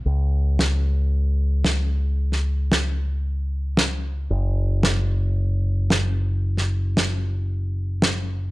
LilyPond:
<<
  \new Staff \with { instrumentName = "Fingered electric bass" } { \clef bass \time 4/4 \key b \major \tempo 4 = 113 cis,1~ | cis,1 | fis,,1~ | fis,,1 | }
  \new DrumStaff \with { instrumentName = "Drums" } \drummode { \time 4/4 r4 sn4 r4 sn4 | r16 sn8. sn4 r4 sn4 | r4 sn4 r4 sn4 | r16 sn8. sn4 r4 sn4 | }
>>